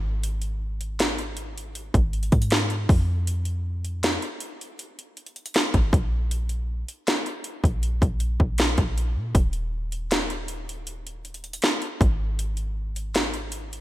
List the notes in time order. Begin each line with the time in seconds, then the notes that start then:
Already playing: G#1
0.23 closed hi-hat
0.42 closed hi-hat
0.81 closed hi-hat
1.00 snare, closed hi-hat
1.18 closed hi-hat
1.37 closed hi-hat
1.58 closed hi-hat
1.75 closed hi-hat
1.94 G#1, kick, closed hi-hat
2.13 closed hi-hat
2.23 closed hi-hat
2.32 G#2, kick, closed hi-hat
2.42 closed hi-hat
2.50 snare, closed hi-hat
2.70 closed hi-hat
2.89 F2, kick, open hi-hat
3.27 closed hi-hat
3.45 closed hi-hat
3.85 closed hi-hat
4.03 snare, closed hi-hat
4.22 closed hi-hat
4.40 closed hi-hat
4.61 closed hi-hat
4.79 closed hi-hat
4.99 closed hi-hat
5.17 closed hi-hat
5.26 closed hi-hat
5.36 closed hi-hat
5.46 closed hi-hat
5.54 snare, closed hi-hat
5.74 G#1, kick, closed hi-hat
5.93 A#1, kick, closed hi-hat
6.31 closed hi-hat
6.49 closed hi-hat
6.88 closed hi-hat
7.07 snare, closed hi-hat
7.26 closed hi-hat
7.44 closed hi-hat
7.64 A#1, kick, closed hi-hat
7.83 closed hi-hat
8.02 A#1, kick, closed hi-hat
8.20 closed hi-hat
8.40 A#1, kick
8.58 snare, closed hi-hat
8.78 A#1, kick, closed hi-hat
8.98 closed hi-hat
9.16 A#2
9.35 D#1, kick, closed hi-hat
9.53 closed hi-hat
9.92 closed hi-hat
10.11 snare, closed hi-hat
10.30 closed hi-hat
10.48 closed hi-hat
10.69 closed hi-hat
10.87 closed hi-hat
11.07 closed hi-hat
11.25 closed hi-hat
11.34 closed hi-hat
11.44 closed hi-hat
11.53 closed hi-hat
11.62 snare, closed hi-hat
11.82 closed hi-hat
12.01 G#1, kick, closed hi-hat
12.39 closed hi-hat
12.57 closed hi-hat
12.96 closed hi-hat
13.15 snare, closed hi-hat
13.34 closed hi-hat
13.52 closed hi-hat
13.73 closed hi-hat